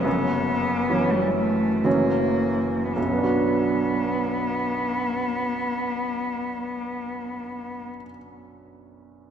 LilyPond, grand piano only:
\new Staff \with { instrumentName = "Grand piano" } { \clef bass \time 3/4 \key b \minor \tempo 4 = 56 <fis,, fis,>4 <e fis cis'>4 <fis,, fis, e fis cis'>4 | <b,, fis, fis b d' fis'>2.~ | <b,, fis, fis b d' fis'>2. | }